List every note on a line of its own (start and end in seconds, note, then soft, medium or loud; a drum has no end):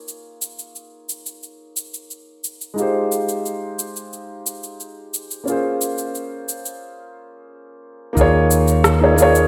0.00 2.72 A#3 medium
0.00 2.73 D#4 medium
0.00 2.74 F4 medium
0.00 2.75 G#4 medium
0.00 2.76 C#5 medium
0.08 cabasa soft
0.42 cabasa medium
0.59 cabasa soft
0.75 cabasa soft
1.09 cabasa medium
1.26 cabasa soft
1.43 cabasa soft
1.76 cabasa medium
1.94 cabasa soft
2.10 cabasa soft
2.44 cabasa medium
2.61 cabasa soft
2.74 5.41 G#3 medium
2.74 5.42 D#4 medium
2.74 5.43 F4 medium
2.78 5.44 G4 medium
2.78 5.45 C5 medium
2.78 cabasa soft
3.12 cabasa medium
3.29 cabasa soft
3.46 cabasa soft
3.79 cabasa medium
3.96 cabasa soft
4.13 cabasa soft
4.46 cabasa medium
4.63 cabasa soft
4.80 cabasa soft
5.14 cabasa medium
5.31 cabasa soft
5.44 8.11 A#3 medium
5.44 8.12 C#4 medium
5.44 8.13 F4 medium
5.44 cabasa soft
5.49 8.14 G#4 medium
5.49 8.15 C5 medium
5.81 cabasa medium
5.98 cabasa soft
6.15 cabasa soft
6.49 cabasa medium
6.66 cabasa soft
8.13 9.48 D#2 medium
8.13 8.93 A#3 medium
8.13 8.94 D#4 medium
8.13 kick loud
8.17 8.95 F4 medium
8.17 8.96 G#4 medium
8.17 8.97 C#5 loud
8.17 cabasa soft
8.51 cabasa medium
8.68 cabasa soft
8.84 cross-stick medium
8.84 cabasa soft
8.99 9.13 A#3 medium
8.99 9.14 D#4 medium
8.99 9.14 F4 medium
8.99 9.15 G#4 medium
9.04 9.15 C#5 medium
9.14 9.48 A#3 medium
9.14 9.48 D#4 medium
9.14 cabasa medium
9.18 9.48 F4 medium
9.18 9.48 G#4 medium
9.18 9.48 C#5 loud
9.35 cabasa soft